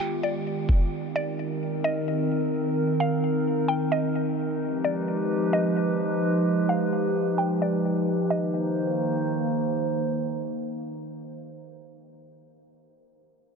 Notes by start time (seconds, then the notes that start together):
Already playing: D#3 G#3 B3 F4 G4
0.00 G5, finger snap
0.23 D5
0.69 kick
0.92 D#3 C4 D#4 A#4
1.16 D5
1.84 D#5
3.00 F5
3.68 G5
3.92 D#5
4.61 F3 G#3 G4 B4
4.84 D5
5.53 D#5
6.69 F5
7.38 G5
7.62 D5
8.30 D#3 A#3 D#4 C5 D#5